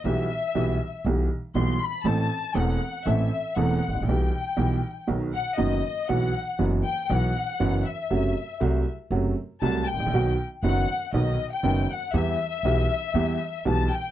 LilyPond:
<<
  \new Staff \with { instrumentName = "Violin section" } { \time 4/4 \key e \minor \tempo 4 = 119 e''2 r4 c'''8 b''8 | a''4 fis''4 e''4 fis''4 | g''2 r8 fis''8 dis''4 | fis''4 r8 g''8 fis''4. e''8~ |
e''4. r4. a''8 g''8~ | g''8 r8 fis''4 dis''8. g''8. fis''8 | e''2. a''8 g''8 | }
  \new Staff \with { instrumentName = "Upright piano" } { \clef bass \time 4/4 \key e \minor <b,, b, e g b g'>8 r8 <b,, b, e g b g'>8 r8 <b,, b, e g b g'>8 r8 <b,, b, e g b g'>8 r8 | <a,, a, e a c' a'>8 r8 <e,, e, e a c' a'>8 r8 <a,, a, e a c' a'>8 r8 <e,, e, e a c' a'>8 r32 gis,,32 a,,32 ais,,32 | <b,, b, e g b g'>8 r8 <b,, b, e g b g'>8 r8 <b,, b, dis fis b fis'>8 r8 <fis,, fis, dis fis b fis'>8 r8 | <b,, b, e fis b fis'>8 r8 <fis,, fis, e fis b fis'>8 r8 <b,, b, e fis b fis'>8 r8 <fis,, fis, e fis b fis'>8 r8 |
<fis, c fis a fis'>8 r8 <c, c fis a fis'>8 r8 <fis, c fis a fis'>8 r8 <c, c fis a fis'>8 r32 gis,,32 a,,32 ais,,32 | <b,, b, dis fis b fis'>8 r8 <fis,, fis, dis fis b fis'>8 r8 <b,, b, dis fis b fis'>8 r8 <fis,, fis, dis fis b fis'>8 r8 | <e, e g b g'>8 r8 <b,, b, e g b g'>8 r8 <e, e g b g'>8 r8 <b,, b, e g b g'>8 r8 | }
  \new Staff \with { instrumentName = "Upright bass" } { \clef bass \time 4/4 \key e \minor b,,16. r8 r32 b,,16. r8 r32 b,,16. r8 r32 b,,16. r8 r32 | a,,16. r8 r32 e,,16. r8 r32 a,,16. r8 r32 e,,16. r16 gis,,32 a,,32 ais,,32 | b,,16. r8 r32 b,,16. r8 r32 b,,16. r8 r32 fis,,16. r8 r32 | b,,16. r8 r32 fis,,16. r8 r32 b,,16. r8 r32 fis,,16. r8 r32 |
fis,,16. r8 r32 c,16. r8 r32 fis,,16. r8 r32 c,16. r16 gis,,32 a,,32 ais,,32 | b,,16. r8 r32 fis,,16. r8 r32 b,,16. r8 r32 fis,,16. r8 r32 | e,16. r8 r32 b,,16. r8 r32 e,16. r8 r32 b,,16. r8 r32 | }
>>